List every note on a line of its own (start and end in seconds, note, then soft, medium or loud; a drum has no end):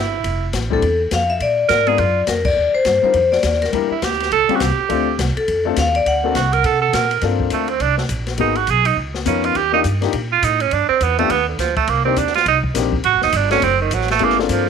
0.00 0.24 G1 medium
0.00 0.50 E4 medium
0.24 0.52 F1 medium
0.24 kick soft
0.24 ride medium
0.53 0.81 A1 medium
0.53 kick soft
0.53 snare medium
0.53 hi-hat pedal soft
0.53 ride medium
0.70 0.81 G3 medium
0.70 0.81 C4 medium
0.70 0.81 D4 medium
0.70 0.81 E4 medium
0.70 0.82 A4 medium
0.70 0.99 A4 medium
0.70 kick medium
0.82 1.11 E2 medium
0.82 kick soft
0.82 ride medium
1.11 1.40 F2 medium
1.11 1.31 F5 loud
1.11 kick soft
1.11 snare medium
1.11 hi-hat pedal medium
1.11 ride medium
1.30 1.41 E5 medium
1.40 1.69 A#2 medium
1.40 2.25 D5 medium
1.40 kick soft
1.40 ride medium
1.68 1.98 G#2 medium
1.68 1.89 A#4 loud
1.68 kick soft
1.68 snare medium
1.68 hi-hat pedal medium
1.68 ride medium
1.87 1.97 G#3 medium
1.87 1.97 B3 medium
1.87 1.98 D4 medium
1.87 1.98 F4 medium
1.87 2.01 G#4 medium
1.87 1.98 A#4 medium
1.87 ride soft
1.98 2.27 F#2 medium
1.98 2.22 F4 medium
1.98 kick soft
1.98 ride medium
2.27 2.56 F2 medium
2.27 2.46 A#4 medium
2.27 kick soft
2.27 snare medium
2.27 hi-hat pedal medium
2.27 ride medium
2.45 2.72 D5 medium
2.45 kick medium
2.45 crash medium
2.57 2.73 D#2 medium
2.74 3.02 C5 medium
2.74 muted upright bass stroke soft
2.85 3.02 G2 medium
2.85 kick soft
2.85 snare medium
2.85 hi-hat pedal medium
2.85 ride medium
3.02 3.13 G3 medium
3.02 3.13 D4 medium
3.02 3.14 D#4 medium
3.02 3.14 F4 medium
3.02 3.14 A#4 medium
3.02 3.34 C5 medium
3.02 muted upright bass stroke soft
3.14 3.43 F2 medium
3.14 kick soft
3.14 ride medium
3.32 3.62 D5 medium
3.32 snare medium
3.43 3.72 D#2 medium
3.43 kick soft
3.43 snare medium
3.43 hi-hat pedal medium
3.43 ride medium
3.53 snare soft
3.62 3.89 A#4 medium
3.62 snare soft
3.62 ride soft
3.72 3.90 E2 medium
3.72 3.89 G3 medium
3.72 3.89 A#3 medium
3.72 3.89 D4 medium
3.72 3.89 E4 medium
3.72 3.90 A#4 medium
3.72 kick soft
3.72 ride medium
3.91 4.06 E4 medium
3.91 muted upright bass stroke soft
4.02 4.31 D2 medium
4.02 4.32 G4 medium
4.02 kick soft
4.02 snare medium
4.02 hi-hat pedal medium
4.02 ride medium
4.12 snare soft
4.20 snare soft
4.20 ride soft
4.31 4.48 C#2 medium
4.31 4.57 A4 loud
4.31 kick soft
4.31 ride medium
4.48 4.59 G3 medium
4.48 4.59 C4 medium
4.48 4.59 C#4 medium
4.48 4.60 F4 medium
4.48 4.60 G4 medium
4.48 muted upright bass stroke soft
4.48 ride soft
4.55 4.63 F#4 medium
4.60 4.77 C2 medium
4.60 5.19 G4 medium
4.60 kick soft
4.60 snare medium
4.60 hi-hat pedal medium
4.60 ride medium
4.77 muted upright bass stroke soft
4.89 5.18 D2 medium
4.89 5.05 A3 medium
4.89 5.06 C4 medium
4.89 5.06 D4 medium
4.89 5.06 F4 medium
4.89 5.06 A4 medium
4.89 kick soft
4.89 ride medium
5.19 5.35 C2 medium
5.19 kick soft
5.19 snare medium
5.19 hi-hat pedal medium
5.19 ride medium
5.36 5.64 A4 medium
5.36 muted upright bass stroke soft
5.36 ride soft
5.48 5.76 F2 medium
5.48 kick soft
5.48 ride medium
5.65 5.76 A3 medium
5.65 5.76 C4 medium
5.65 5.76 D4 medium
5.65 5.76 F4 medium
5.65 5.76 A4 medium
5.76 6.05 D#2 medium
5.76 5.95 F5 loud
5.76 kick soft
5.76 snare medium
5.76 hi-hat pedal medium
5.76 ride medium
5.95 6.06 D5 medium
5.95 ride soft
6.06 6.34 D2 medium
6.06 7.08 F#5 loud
6.06 kick soft
6.06 ride medium
6.24 6.34 A#3 medium
6.24 6.34 C4 medium
6.24 6.34 D4 medium
6.24 6.35 F#4 medium
6.24 6.35 A4 medium
6.35 6.63 C2 medium
6.35 6.54 F#4 medium
6.35 kick soft
6.35 snare medium
6.35 hi-hat pedal medium
6.35 ride medium
6.53 6.67 A#4 loud
6.53 ride soft
6.64 6.92 C3 medium
6.64 6.81 A4 loud
6.64 kick soft
6.64 ride medium
6.82 6.95 A4 medium
6.93 7.21 A#2 medium
6.93 7.23 A#4 medium
6.93 kick soft
6.93 snare medium
6.93 hi-hat pedal medium
6.93 ride medium
7.11 ride soft
7.21 7.50 G2 medium
7.21 7.66 A#3 medium
7.21 7.66 C4 medium
7.21 7.66 D4 medium
7.21 7.66 F4 medium
7.21 7.66 A4 medium
7.21 kick soft
7.21 snare soft
7.21 ride medium
7.40 kick medium
7.50 7.79 D2 medium
7.50 7.71 A3 medium
7.50 kick soft
7.50 hi-hat pedal soft
7.50 ride medium
7.68 7.83 C4 medium
7.68 ride soft
7.80 8.08 C2 medium
7.80 7.98 D4 medium
7.80 kick soft
7.80 ride medium
7.98 8.04 A3 soft
7.98 snare medium
8.09 8.38 A#1 medium
8.09 kick soft
8.09 hi-hat pedal medium
8.09 ride medium
8.27 snare soft
8.27 ride soft
8.38 8.67 G#1 medium
8.38 8.55 A#3 medium
8.38 8.55 B3 medium
8.38 8.55 D#4 medium
8.38 8.58 D#4 medium
8.38 8.55 F#4 medium
8.38 8.56 G#4 medium
8.38 kick soft
8.38 ride medium
8.55 8.72 F#4 medium
8.55 ride soft
8.67 8.96 B1 medium
8.67 8.88 G#4 loud
8.67 kick soft
8.67 hi-hat pedal soft
8.67 ride medium
8.85 8.97 D#4 medium
8.85 ride medium
8.97 9.25 C#2 medium
8.97 kick soft
9.14 snare soft
9.25 9.54 F2 medium
9.25 9.55 B3 medium
9.25 9.55 C#4 medium
9.25 9.46 C#4 medium
9.25 9.55 D#4 medium
9.25 9.56 F4 medium
9.25 9.56 A#4 medium
9.25 kick soft
9.25 hi-hat pedal medium
9.25 ride medium
9.44 9.58 F4 medium
9.44 ride soft
9.55 9.84 D#2 medium
9.55 9.73 G4 medium
9.55 kick soft
9.55 ride medium
9.72 9.83 A#3 medium
9.72 9.83 D4 medium
9.72 9.80 D#4 medium
9.72 9.83 D#4 medium
9.72 9.84 F4 medium
9.72 9.84 G4 medium
9.84 10.13 G2 medium
9.84 kick soft
9.84 hi-hat pedal medium
9.84 ride medium
10.01 10.12 A#3 medium
10.01 10.12 D4 medium
10.01 10.13 D#4 medium
10.01 10.13 F4 medium
10.01 10.13 G4 medium
10.01 snare soft
10.01 ride soft
10.13 10.42 A#2 medium
10.13 kick soft
10.13 ride medium
10.32 10.46 F4 medium
10.42 10.71 A2 medium
10.42 10.62 D#4 medium
10.42 kick soft
10.42 hi-hat pedal medium
10.42 ride medium
10.60 10.75 C#4 medium
10.60 ride soft
10.71 10.88 G2 medium
10.71 10.88 D4 medium
10.71 kick soft
10.71 ride medium
10.89 11.04 C4 medium
10.89 muted upright bass stroke soft
11.01 11.29 E2 medium
11.01 11.18 B3 medium
11.01 kick soft
11.01 hi-hat pedal medium
11.01 ride medium
11.19 11.29 A3 medium
11.19 11.32 A3 medium
11.19 11.29 B3 medium
11.19 11.29 D4 medium
11.19 11.29 F4 medium
11.19 11.30 G4 medium
11.19 ride soft
11.30 11.58 D#2 medium
11.30 11.48 B3 loud
11.30 kick soft
11.30 ride medium
11.48 11.61 D3 soft
11.59 11.87 D2 medium
11.59 11.76 F3 medium
11.59 kick soft
11.59 snare soft
11.59 hi-hat pedal medium
11.59 ride medium
11.76 11.91 A3 medium
11.76 kick medium
11.76 ride soft
11.87 12.16 C2 medium
11.87 12.04 A#3 medium
11.87 kick soft
11.87 ride medium
12.05 12.15 A#3 medium
12.05 12.20 C4 medium
12.05 12.16 C4 medium
12.05 12.16 D4 medium
12.05 12.16 D#4 medium
12.05 12.16 G4 medium
12.16 12.45 D#2 medium
12.16 12.35 D4 medium
12.16 kick soft
12.16 hi-hat pedal medium
12.16 ride medium
12.27 snare soft
12.34 12.46 F4 loud
12.34 snare soft
12.34 ride soft
12.46 12.74 C2 medium
12.46 12.58 D#4 medium
12.46 kick soft
12.46 ride medium
12.64 kick medium
12.74 13.03 A#1 medium
12.74 12.91 A#3 medium
12.74 12.91 C4 medium
12.74 12.91 D4 medium
12.74 12.92 D#4 medium
12.74 12.92 G4 medium
12.74 kick soft
12.74 snare soft
12.74 hi-hat pedal medium
12.74 ride medium
12.93 kick medium
13.04 13.15 A1 medium
13.04 13.21 F#4 medium
13.04 kick soft
13.04 ride medium
13.14 13.23 F#1 medium
13.22 13.33 D1 medium
13.22 13.38 D#4 medium
13.22 snare medium
13.32 13.61 G1 medium
13.32 13.51 D4 medium
13.32 kick soft
13.32 hi-hat pedal medium
13.32 ride medium
13.50 13.61 A3 medium
13.50 13.61 C4 medium
13.50 13.66 C#4 medium
13.50 13.61 D4 medium
13.50 13.62 F#4 medium
13.50 13.62 A4 medium
13.50 snare soft
13.50 ride soft
13.62 13.90 F#1 medium
13.62 13.81 C4 medium
13.62 kick soft
13.62 ride medium
13.81 13.96 D#3 medium
13.91 14.19 A1 medium
13.91 14.11 F#3 medium
13.91 kick soft
13.91 hi-hat pedal medium
13.91 ride medium
14.01 snare soft
14.08 14.25 A3 medium
14.08 snare soft
14.08 ride soft
14.19 14.48 G1 medium
14.19 14.36 A3 medium
14.19 14.36 B3 medium
14.19 14.37 C#4 medium
14.19 14.37 E4 medium
14.19 14.37 G#4 medium
14.19 kick soft
14.19 ride medium
14.24 14.40 A#3 medium
14.30 snare soft
14.38 14.54 D3 soft
14.38 14.64 A#3 medium
14.38 14.64 C4 medium
14.38 14.64 D4 medium
14.38 14.64 F4 medium
14.38 14.64 A4 medium
14.38 snare soft
14.49 14.69 G2 medium
14.49 14.69 F3 medium
14.49 kick soft
14.49 hi-hat pedal medium
14.49 ride medium